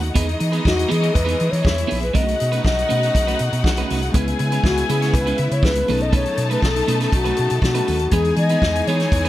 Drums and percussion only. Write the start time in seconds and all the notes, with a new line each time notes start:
0.03 closed hi-hat
0.15 kick, closed hi-hat
0.29 closed hi-hat
0.40 closed hi-hat
0.53 closed hi-hat
0.65 kick, snare
0.79 closed hi-hat
0.91 closed hi-hat
1.03 closed hi-hat
1.15 kick, closed hi-hat
1.28 closed hi-hat
1.40 closed hi-hat
1.53 closed hi-hat
1.65 kick, snare
1.78 closed hi-hat
1.91 open hi-hat
2.03 closed hi-hat
2.15 kick, closed hi-hat
2.28 closed hi-hat
2.40 closed hi-hat
2.52 closed hi-hat
2.65 kick, snare
2.79 closed hi-hat
2.90 closed hi-hat
3.03 closed hi-hat
3.15 kick, closed hi-hat
3.28 closed hi-hat
3.39 closed hi-hat
3.53 closed hi-hat
3.64 kick, snare
3.77 closed hi-hat
3.90 open hi-hat
4.02 closed hi-hat
4.14 kick, closed hi-hat
4.28 closed hi-hat
4.39 closed hi-hat
4.52 closed hi-hat
4.64 kick, snare
4.77 closed hi-hat
4.89 closed hi-hat
5.02 snare, closed hi-hat
5.14 kick, closed hi-hat
5.27 closed hi-hat
5.38 closed hi-hat
5.51 closed hi-hat
5.63 kick, snare
5.75 closed hi-hat
5.88 open hi-hat
6.00 closed hi-hat
6.13 kick, closed hi-hat
6.25 closed hi-hat
6.37 closed hi-hat
6.51 closed hi-hat
6.62 kick, snare
6.76 closed hi-hat
6.88 closed hi-hat
7.00 snare, closed hi-hat
7.12 kick, closed hi-hat
7.25 closed hi-hat
7.37 closed hi-hat
7.50 closed hi-hat
7.62 kick, snare
7.75 closed hi-hat
7.88 open hi-hat
7.99 closed hi-hat
8.11 kick, closed hi-hat
8.25 closed hi-hat
8.36 closed hi-hat
8.49 closed hi-hat
8.62 kick, snare
8.76 closed hi-hat
8.87 closed hi-hat
9.00 snare, closed hi-hat
9.12 kick, closed hi-hat
9.25 closed hi-hat